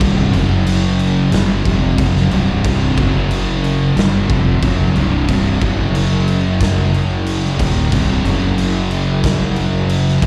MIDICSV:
0, 0, Header, 1, 5, 480
1, 0, Start_track
1, 0, Tempo, 659341
1, 10, Time_signature, 4, 2, 24, 8
1, 7474, End_track
2, 0, Start_track
2, 0, Title_t, "Distorted electric guitar"
2, 0, Program_c, 0, 30
2, 7440, Note_on_c, 0, 51, 106
2, 7474, Note_off_c, 0, 51, 0
2, 7474, End_track
3, 0, Start_track
3, 0, Title_t, "Distorted electric guitar"
3, 0, Program_c, 1, 30
3, 8, Note_on_c, 1, 36, 98
3, 12, Note_on_c, 1, 43, 102
3, 15, Note_on_c, 1, 48, 113
3, 241, Note_off_c, 1, 36, 0
3, 243, Note_off_c, 1, 43, 0
3, 245, Note_off_c, 1, 48, 0
3, 247, Note_on_c, 1, 42, 95
3, 252, Note_on_c, 1, 49, 106
3, 254, Note_on_c, 1, 54, 94
3, 960, Note_off_c, 1, 42, 0
3, 962, Note_off_c, 1, 49, 0
3, 964, Note_off_c, 1, 54, 0
3, 966, Note_on_c, 1, 43, 103
3, 966, Note_on_c, 1, 50, 104
3, 969, Note_on_c, 1, 55, 113
3, 1200, Note_off_c, 1, 43, 0
3, 1200, Note_off_c, 1, 50, 0
3, 1201, Note_off_c, 1, 55, 0
3, 1205, Note_on_c, 1, 41, 96
3, 1209, Note_on_c, 1, 53, 108
3, 1210, Note_on_c, 1, 48, 105
3, 1432, Note_off_c, 1, 41, 0
3, 1435, Note_on_c, 1, 42, 106
3, 1438, Note_off_c, 1, 48, 0
3, 1439, Note_off_c, 1, 53, 0
3, 1441, Note_on_c, 1, 49, 112
3, 1442, Note_on_c, 1, 54, 125
3, 1674, Note_off_c, 1, 42, 0
3, 1677, Note_off_c, 1, 49, 0
3, 1677, Note_off_c, 1, 54, 0
3, 1686, Note_on_c, 1, 36, 88
3, 1686, Note_on_c, 1, 43, 90
3, 1690, Note_on_c, 1, 48, 101
3, 1916, Note_off_c, 1, 36, 0
3, 1920, Note_off_c, 1, 43, 0
3, 1922, Note_off_c, 1, 48, 0
3, 1924, Note_on_c, 1, 36, 85
3, 1929, Note_on_c, 1, 43, 98
3, 1934, Note_on_c, 1, 48, 115
3, 2159, Note_off_c, 1, 36, 0
3, 2161, Note_off_c, 1, 43, 0
3, 2164, Note_off_c, 1, 48, 0
3, 2164, Note_on_c, 1, 42, 89
3, 2168, Note_on_c, 1, 49, 98
3, 2168, Note_on_c, 1, 54, 92
3, 2879, Note_off_c, 1, 42, 0
3, 2881, Note_off_c, 1, 49, 0
3, 2881, Note_off_c, 1, 54, 0
3, 2885, Note_on_c, 1, 43, 100
3, 2888, Note_on_c, 1, 50, 97
3, 2892, Note_on_c, 1, 55, 99
3, 3119, Note_off_c, 1, 43, 0
3, 3121, Note_off_c, 1, 50, 0
3, 3123, Note_off_c, 1, 55, 0
3, 3123, Note_on_c, 1, 41, 90
3, 3127, Note_on_c, 1, 53, 108
3, 3129, Note_on_c, 1, 48, 107
3, 3358, Note_off_c, 1, 41, 0
3, 3360, Note_off_c, 1, 53, 0
3, 3361, Note_off_c, 1, 48, 0
3, 3367, Note_on_c, 1, 42, 95
3, 3368, Note_on_c, 1, 49, 104
3, 3372, Note_on_c, 1, 54, 102
3, 3601, Note_off_c, 1, 42, 0
3, 3601, Note_off_c, 1, 49, 0
3, 3603, Note_off_c, 1, 54, 0
3, 3609, Note_on_c, 1, 36, 76
3, 3610, Note_on_c, 1, 43, 80
3, 3616, Note_on_c, 1, 48, 85
3, 3836, Note_off_c, 1, 36, 0
3, 3840, Note_off_c, 1, 43, 0
3, 3845, Note_off_c, 1, 48, 0
3, 3845, Note_on_c, 1, 36, 94
3, 3848, Note_on_c, 1, 43, 105
3, 3855, Note_on_c, 1, 48, 100
3, 4075, Note_off_c, 1, 36, 0
3, 4077, Note_off_c, 1, 43, 0
3, 4078, Note_on_c, 1, 42, 94
3, 4080, Note_on_c, 1, 49, 97
3, 4081, Note_off_c, 1, 48, 0
3, 4084, Note_on_c, 1, 54, 99
3, 5516, Note_off_c, 1, 42, 0
3, 5518, Note_off_c, 1, 49, 0
3, 5520, Note_off_c, 1, 54, 0
3, 5529, Note_on_c, 1, 39, 84
3, 5531, Note_on_c, 1, 46, 96
3, 5534, Note_on_c, 1, 51, 91
3, 5762, Note_off_c, 1, 39, 0
3, 5763, Note_off_c, 1, 46, 0
3, 5764, Note_off_c, 1, 51, 0
3, 5772, Note_on_c, 1, 36, 99
3, 5777, Note_on_c, 1, 43, 100
3, 5781, Note_on_c, 1, 48, 117
3, 6003, Note_off_c, 1, 36, 0
3, 6006, Note_off_c, 1, 43, 0
3, 6006, Note_on_c, 1, 42, 95
3, 6008, Note_off_c, 1, 48, 0
3, 6010, Note_on_c, 1, 49, 104
3, 6012, Note_on_c, 1, 54, 101
3, 7439, Note_off_c, 1, 42, 0
3, 7441, Note_off_c, 1, 49, 0
3, 7442, Note_off_c, 1, 54, 0
3, 7449, Note_on_c, 1, 39, 91
3, 7451, Note_on_c, 1, 46, 82
3, 7474, Note_off_c, 1, 39, 0
3, 7474, Note_off_c, 1, 46, 0
3, 7474, End_track
4, 0, Start_track
4, 0, Title_t, "Fingered electric bass"
4, 0, Program_c, 2, 33
4, 3, Note_on_c, 2, 24, 105
4, 229, Note_off_c, 2, 24, 0
4, 246, Note_on_c, 2, 30, 97
4, 937, Note_off_c, 2, 30, 0
4, 963, Note_on_c, 2, 31, 98
4, 1188, Note_off_c, 2, 31, 0
4, 1205, Note_on_c, 2, 29, 96
4, 1430, Note_off_c, 2, 29, 0
4, 1441, Note_on_c, 2, 30, 98
4, 1667, Note_off_c, 2, 30, 0
4, 1693, Note_on_c, 2, 24, 96
4, 1914, Note_off_c, 2, 24, 0
4, 1924, Note_on_c, 2, 24, 108
4, 2149, Note_off_c, 2, 24, 0
4, 2162, Note_on_c, 2, 30, 101
4, 2856, Note_off_c, 2, 30, 0
4, 2882, Note_on_c, 2, 31, 100
4, 3108, Note_off_c, 2, 31, 0
4, 3126, Note_on_c, 2, 29, 93
4, 3350, Note_off_c, 2, 29, 0
4, 3364, Note_on_c, 2, 30, 95
4, 3589, Note_off_c, 2, 30, 0
4, 3605, Note_on_c, 2, 24, 90
4, 3830, Note_off_c, 2, 24, 0
4, 3851, Note_on_c, 2, 24, 96
4, 4073, Note_off_c, 2, 24, 0
4, 4088, Note_on_c, 2, 30, 101
4, 5500, Note_off_c, 2, 30, 0
4, 5527, Note_on_c, 2, 27, 96
4, 5751, Note_off_c, 2, 27, 0
4, 5769, Note_on_c, 2, 24, 98
4, 5992, Note_off_c, 2, 24, 0
4, 6002, Note_on_c, 2, 30, 101
4, 7415, Note_off_c, 2, 30, 0
4, 7440, Note_on_c, 2, 27, 100
4, 7474, Note_off_c, 2, 27, 0
4, 7474, End_track
5, 0, Start_track
5, 0, Title_t, "Drums"
5, 5, Note_on_c, 9, 49, 84
5, 6, Note_on_c, 9, 36, 106
5, 78, Note_off_c, 9, 49, 0
5, 79, Note_off_c, 9, 36, 0
5, 243, Note_on_c, 9, 49, 68
5, 316, Note_off_c, 9, 49, 0
5, 485, Note_on_c, 9, 49, 89
5, 557, Note_off_c, 9, 49, 0
5, 723, Note_on_c, 9, 49, 70
5, 795, Note_off_c, 9, 49, 0
5, 961, Note_on_c, 9, 49, 96
5, 978, Note_on_c, 9, 38, 115
5, 1034, Note_off_c, 9, 49, 0
5, 1051, Note_off_c, 9, 38, 0
5, 1203, Note_on_c, 9, 49, 68
5, 1204, Note_on_c, 9, 36, 105
5, 1275, Note_off_c, 9, 49, 0
5, 1277, Note_off_c, 9, 36, 0
5, 1443, Note_on_c, 9, 49, 92
5, 1444, Note_on_c, 9, 36, 113
5, 1516, Note_off_c, 9, 49, 0
5, 1517, Note_off_c, 9, 36, 0
5, 1578, Note_on_c, 9, 38, 36
5, 1650, Note_off_c, 9, 38, 0
5, 1684, Note_on_c, 9, 49, 64
5, 1757, Note_off_c, 9, 49, 0
5, 1926, Note_on_c, 9, 36, 117
5, 1926, Note_on_c, 9, 49, 93
5, 1998, Note_off_c, 9, 36, 0
5, 1999, Note_off_c, 9, 49, 0
5, 2167, Note_on_c, 9, 36, 108
5, 2169, Note_on_c, 9, 49, 69
5, 2240, Note_off_c, 9, 36, 0
5, 2241, Note_off_c, 9, 49, 0
5, 2408, Note_on_c, 9, 49, 89
5, 2480, Note_off_c, 9, 49, 0
5, 2650, Note_on_c, 9, 49, 61
5, 2723, Note_off_c, 9, 49, 0
5, 2889, Note_on_c, 9, 49, 80
5, 2905, Note_on_c, 9, 38, 117
5, 2961, Note_off_c, 9, 49, 0
5, 2978, Note_off_c, 9, 38, 0
5, 3128, Note_on_c, 9, 36, 106
5, 3130, Note_on_c, 9, 49, 57
5, 3201, Note_off_c, 9, 36, 0
5, 3202, Note_off_c, 9, 49, 0
5, 3368, Note_on_c, 9, 36, 115
5, 3369, Note_on_c, 9, 49, 79
5, 3441, Note_off_c, 9, 36, 0
5, 3441, Note_off_c, 9, 49, 0
5, 3608, Note_on_c, 9, 49, 56
5, 3681, Note_off_c, 9, 49, 0
5, 3847, Note_on_c, 9, 49, 87
5, 3849, Note_on_c, 9, 36, 116
5, 3920, Note_off_c, 9, 49, 0
5, 3922, Note_off_c, 9, 36, 0
5, 4087, Note_on_c, 9, 49, 61
5, 4088, Note_on_c, 9, 36, 113
5, 4160, Note_off_c, 9, 49, 0
5, 4161, Note_off_c, 9, 36, 0
5, 4330, Note_on_c, 9, 49, 84
5, 4403, Note_off_c, 9, 49, 0
5, 4569, Note_on_c, 9, 49, 64
5, 4642, Note_off_c, 9, 49, 0
5, 4809, Note_on_c, 9, 49, 93
5, 4810, Note_on_c, 9, 36, 117
5, 4826, Note_on_c, 9, 38, 123
5, 4882, Note_off_c, 9, 36, 0
5, 4882, Note_off_c, 9, 49, 0
5, 4898, Note_off_c, 9, 38, 0
5, 5054, Note_on_c, 9, 49, 60
5, 5127, Note_off_c, 9, 49, 0
5, 5289, Note_on_c, 9, 49, 95
5, 5362, Note_off_c, 9, 49, 0
5, 5424, Note_on_c, 9, 38, 35
5, 5497, Note_off_c, 9, 38, 0
5, 5529, Note_on_c, 9, 36, 104
5, 5531, Note_on_c, 9, 49, 102
5, 5602, Note_off_c, 9, 36, 0
5, 5604, Note_off_c, 9, 49, 0
5, 5765, Note_on_c, 9, 49, 87
5, 5768, Note_on_c, 9, 36, 106
5, 5838, Note_off_c, 9, 49, 0
5, 5840, Note_off_c, 9, 36, 0
5, 6008, Note_on_c, 9, 49, 69
5, 6080, Note_off_c, 9, 49, 0
5, 6245, Note_on_c, 9, 49, 82
5, 6318, Note_off_c, 9, 49, 0
5, 6484, Note_on_c, 9, 49, 69
5, 6557, Note_off_c, 9, 49, 0
5, 6724, Note_on_c, 9, 49, 92
5, 6726, Note_on_c, 9, 36, 111
5, 6741, Note_on_c, 9, 38, 121
5, 6797, Note_off_c, 9, 49, 0
5, 6799, Note_off_c, 9, 36, 0
5, 6814, Note_off_c, 9, 38, 0
5, 6961, Note_on_c, 9, 49, 70
5, 7034, Note_off_c, 9, 49, 0
5, 7203, Note_on_c, 9, 49, 89
5, 7276, Note_off_c, 9, 49, 0
5, 7343, Note_on_c, 9, 38, 35
5, 7415, Note_off_c, 9, 38, 0
5, 7442, Note_on_c, 9, 49, 104
5, 7443, Note_on_c, 9, 36, 107
5, 7474, Note_off_c, 9, 36, 0
5, 7474, Note_off_c, 9, 49, 0
5, 7474, End_track
0, 0, End_of_file